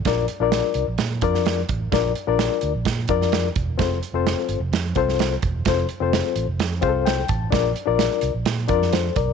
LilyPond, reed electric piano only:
\new Staff \with { instrumentName = "Reed electric piano" } { \time 4/4 \key bes \lydian \tempo 4 = 128 << { r1 | r1 | r1 | r2 r8 f''8 g''8 a''8 |
r2. <a' c''>8 <bes' d''>8 | } \\ { <d' f' bes' d''>8 r16 <d' f' bes' d''>4 r8. <d' f' bes' d''>8. r8. | <d' f' bes' d''>8 r16 <d' f' bes' d''>4 r8. <d' f' bes' d''>8. r8. | <c' f' a' c''>8 r16 <c' f' a' c''>4 r8. <c' f' a' c''>8. r8. | <c' f' a' c''>8 r16 <c' f' a' c''>4 r8. <c' f' aes' a' c''>8. r8. |
<d' f' bes' d''>8 r16 <d' f' bes' d''>4 r8. <d' f' bes' d''>8. r8. | } >> }